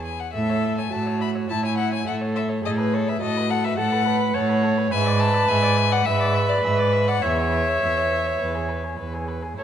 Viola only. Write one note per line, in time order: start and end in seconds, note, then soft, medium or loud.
0.34 0.88 A4 medium
0.92 1.51 F#4 medium
1.50 2.06 E4 medium
2.07 2.63 A4 medium
2.64 3.20 G#4 medium
3.21 3.79 F#4 medium
3.77 4.05 A4 medium
4.06 4.36 B4 loud
4.34 4.93 C#5 loud
4.91 6.04 B4 loud
6.05 7.20 B4 loud
7.22 9.25 C#5 loud
9.58 9.64 C#5 medium